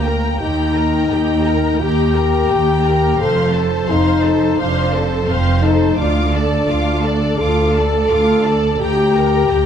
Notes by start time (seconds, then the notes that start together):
Already playing: D2 A#3
0.04 A#4 G5 A#5
0.39 D#2 D#4 G4 G5 A#5
0.75 A#4 G5 A#5
1.10 D#2 G4 G5 A#5
1.45 A#4 G5 A#5
1.80 D#2 G4 G5 A#5
2.14 A#4 G5 A#5
2.49 D#2 G4 G5 A#5
2.84 A#4 G5 A#5
3.19 F1 F2 A4 C5 F5 C6
3.54 A4 C5 A5
3.89 F1 F2 D#4 C5 F5 C6
4.24 A4 C5 A5
4.59 F1 F2 D4 C5 F5 C6
4.94 A4 C5 A5
5.27 F1 F2 C4 C5 F5 C6
5.62 D#4 A4 C5 A5
5.97 D2 D4 F4 F5 D6
6.33 A4 D5 A5
6.68 D2 F4 F5 D6
7.03 A4 D5 A5
7.38 D2 F4 A4 F5 D6
7.75 A4 D5 A5
8.10 D2 F4 F5 D6
8.45 A4 D5 A5
8.80 D2 G4 G5 A#5
9.15 A#4 G5 A#5
9.50 D2 G4 G5 A#5